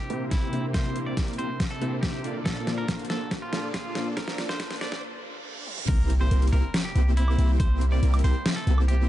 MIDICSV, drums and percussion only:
0, 0, Header, 1, 2, 480
1, 0, Start_track
1, 0, Tempo, 428571
1, 831, Time_signature, 4, 2, 24, 8
1, 10179, End_track
2, 0, Start_track
2, 0, Title_t, "Drums"
2, 112, Note_on_c, 9, 42, 67
2, 224, Note_off_c, 9, 42, 0
2, 351, Note_on_c, 9, 36, 97
2, 351, Note_on_c, 9, 38, 54
2, 351, Note_on_c, 9, 42, 81
2, 463, Note_off_c, 9, 36, 0
2, 463, Note_off_c, 9, 38, 0
2, 463, Note_off_c, 9, 42, 0
2, 592, Note_on_c, 9, 42, 66
2, 704, Note_off_c, 9, 42, 0
2, 832, Note_on_c, 9, 36, 93
2, 832, Note_on_c, 9, 38, 60
2, 832, Note_on_c, 9, 42, 78
2, 944, Note_off_c, 9, 36, 0
2, 944, Note_off_c, 9, 38, 0
2, 944, Note_off_c, 9, 42, 0
2, 1072, Note_on_c, 9, 42, 67
2, 1184, Note_off_c, 9, 42, 0
2, 1312, Note_on_c, 9, 36, 99
2, 1312, Note_on_c, 9, 38, 63
2, 1312, Note_on_c, 9, 42, 79
2, 1424, Note_off_c, 9, 36, 0
2, 1424, Note_off_c, 9, 38, 0
2, 1424, Note_off_c, 9, 42, 0
2, 1435, Note_on_c, 9, 42, 49
2, 1495, Note_off_c, 9, 42, 0
2, 1495, Note_on_c, 9, 42, 65
2, 1553, Note_off_c, 9, 42, 0
2, 1553, Note_on_c, 9, 42, 68
2, 1665, Note_off_c, 9, 42, 0
2, 1791, Note_on_c, 9, 36, 97
2, 1793, Note_on_c, 9, 38, 66
2, 1793, Note_on_c, 9, 42, 80
2, 1903, Note_off_c, 9, 36, 0
2, 1905, Note_off_c, 9, 38, 0
2, 1905, Note_off_c, 9, 42, 0
2, 2033, Note_on_c, 9, 42, 66
2, 2145, Note_off_c, 9, 42, 0
2, 2270, Note_on_c, 9, 36, 101
2, 2272, Note_on_c, 9, 38, 69
2, 2272, Note_on_c, 9, 42, 78
2, 2382, Note_off_c, 9, 36, 0
2, 2384, Note_off_c, 9, 38, 0
2, 2384, Note_off_c, 9, 42, 0
2, 2511, Note_on_c, 9, 42, 67
2, 2623, Note_off_c, 9, 42, 0
2, 2750, Note_on_c, 9, 36, 97
2, 2752, Note_on_c, 9, 38, 74
2, 2752, Note_on_c, 9, 42, 77
2, 2862, Note_off_c, 9, 36, 0
2, 2864, Note_off_c, 9, 38, 0
2, 2864, Note_off_c, 9, 42, 0
2, 2993, Note_on_c, 9, 38, 78
2, 2993, Note_on_c, 9, 42, 64
2, 3105, Note_off_c, 9, 38, 0
2, 3105, Note_off_c, 9, 42, 0
2, 3230, Note_on_c, 9, 36, 102
2, 3231, Note_on_c, 9, 38, 77
2, 3231, Note_on_c, 9, 42, 80
2, 3342, Note_off_c, 9, 36, 0
2, 3343, Note_off_c, 9, 38, 0
2, 3343, Note_off_c, 9, 42, 0
2, 3353, Note_on_c, 9, 42, 49
2, 3412, Note_off_c, 9, 42, 0
2, 3412, Note_on_c, 9, 42, 62
2, 3471, Note_off_c, 9, 42, 0
2, 3471, Note_on_c, 9, 38, 82
2, 3471, Note_on_c, 9, 42, 66
2, 3583, Note_off_c, 9, 38, 0
2, 3583, Note_off_c, 9, 42, 0
2, 3709, Note_on_c, 9, 36, 97
2, 3711, Note_on_c, 9, 38, 85
2, 3711, Note_on_c, 9, 42, 76
2, 3821, Note_off_c, 9, 36, 0
2, 3823, Note_off_c, 9, 38, 0
2, 3823, Note_off_c, 9, 42, 0
2, 3950, Note_on_c, 9, 38, 83
2, 3950, Note_on_c, 9, 42, 65
2, 4062, Note_off_c, 9, 38, 0
2, 4062, Note_off_c, 9, 42, 0
2, 4189, Note_on_c, 9, 36, 104
2, 4190, Note_on_c, 9, 38, 86
2, 4190, Note_on_c, 9, 42, 80
2, 4301, Note_off_c, 9, 36, 0
2, 4302, Note_off_c, 9, 38, 0
2, 4302, Note_off_c, 9, 42, 0
2, 4428, Note_on_c, 9, 38, 89
2, 4428, Note_on_c, 9, 42, 64
2, 4540, Note_off_c, 9, 38, 0
2, 4540, Note_off_c, 9, 42, 0
2, 4669, Note_on_c, 9, 36, 97
2, 4669, Note_on_c, 9, 38, 94
2, 4669, Note_on_c, 9, 42, 79
2, 4781, Note_off_c, 9, 36, 0
2, 4781, Note_off_c, 9, 38, 0
2, 4781, Note_off_c, 9, 42, 0
2, 4790, Note_on_c, 9, 38, 83
2, 4902, Note_off_c, 9, 38, 0
2, 4910, Note_on_c, 9, 38, 95
2, 4910, Note_on_c, 9, 42, 63
2, 5022, Note_off_c, 9, 38, 0
2, 5022, Note_off_c, 9, 42, 0
2, 5032, Note_on_c, 9, 38, 84
2, 5144, Note_off_c, 9, 38, 0
2, 5149, Note_on_c, 9, 36, 103
2, 5150, Note_on_c, 9, 38, 96
2, 5150, Note_on_c, 9, 42, 77
2, 5261, Note_off_c, 9, 36, 0
2, 5262, Note_off_c, 9, 38, 0
2, 5262, Note_off_c, 9, 42, 0
2, 5271, Note_on_c, 9, 38, 87
2, 5271, Note_on_c, 9, 42, 48
2, 5329, Note_off_c, 9, 42, 0
2, 5329, Note_on_c, 9, 42, 63
2, 5383, Note_off_c, 9, 38, 0
2, 5390, Note_off_c, 9, 42, 0
2, 5390, Note_on_c, 9, 38, 101
2, 5390, Note_on_c, 9, 42, 64
2, 5502, Note_off_c, 9, 38, 0
2, 5502, Note_off_c, 9, 42, 0
2, 5511, Note_on_c, 9, 38, 89
2, 5623, Note_off_c, 9, 38, 0
2, 6350, Note_on_c, 9, 48, 61
2, 6462, Note_off_c, 9, 48, 0
2, 6471, Note_on_c, 9, 47, 75
2, 6583, Note_off_c, 9, 47, 0
2, 6589, Note_on_c, 9, 42, 85
2, 6589, Note_on_c, 9, 49, 108
2, 6590, Note_on_c, 9, 36, 118
2, 6701, Note_off_c, 9, 42, 0
2, 6701, Note_off_c, 9, 49, 0
2, 6702, Note_off_c, 9, 36, 0
2, 6831, Note_on_c, 9, 42, 73
2, 6943, Note_off_c, 9, 42, 0
2, 7069, Note_on_c, 9, 42, 84
2, 7181, Note_off_c, 9, 42, 0
2, 7193, Note_on_c, 9, 42, 54
2, 7252, Note_off_c, 9, 42, 0
2, 7252, Note_on_c, 9, 42, 69
2, 7310, Note_on_c, 9, 46, 93
2, 7364, Note_off_c, 9, 42, 0
2, 7422, Note_off_c, 9, 46, 0
2, 7551, Note_on_c, 9, 38, 123
2, 7551, Note_on_c, 9, 42, 85
2, 7663, Note_off_c, 9, 38, 0
2, 7663, Note_off_c, 9, 42, 0
2, 7790, Note_on_c, 9, 42, 71
2, 7902, Note_off_c, 9, 42, 0
2, 8031, Note_on_c, 9, 42, 85
2, 8143, Note_off_c, 9, 42, 0
2, 8153, Note_on_c, 9, 76, 61
2, 8265, Note_off_c, 9, 76, 0
2, 8272, Note_on_c, 9, 42, 68
2, 8384, Note_off_c, 9, 42, 0
2, 8510, Note_on_c, 9, 36, 121
2, 8511, Note_on_c, 9, 42, 85
2, 8622, Note_off_c, 9, 36, 0
2, 8623, Note_off_c, 9, 42, 0
2, 8750, Note_on_c, 9, 42, 68
2, 8862, Note_off_c, 9, 42, 0
2, 8991, Note_on_c, 9, 42, 83
2, 9103, Note_off_c, 9, 42, 0
2, 9113, Note_on_c, 9, 42, 50
2, 9113, Note_on_c, 9, 76, 78
2, 9172, Note_off_c, 9, 42, 0
2, 9172, Note_on_c, 9, 42, 66
2, 9225, Note_off_c, 9, 76, 0
2, 9232, Note_on_c, 9, 46, 92
2, 9284, Note_off_c, 9, 42, 0
2, 9344, Note_off_c, 9, 46, 0
2, 9472, Note_on_c, 9, 38, 124
2, 9472, Note_on_c, 9, 42, 84
2, 9584, Note_off_c, 9, 38, 0
2, 9584, Note_off_c, 9, 42, 0
2, 9711, Note_on_c, 9, 42, 69
2, 9823, Note_off_c, 9, 42, 0
2, 9833, Note_on_c, 9, 76, 59
2, 9945, Note_off_c, 9, 76, 0
2, 9951, Note_on_c, 9, 42, 82
2, 10063, Note_off_c, 9, 42, 0
2, 10179, End_track
0, 0, End_of_file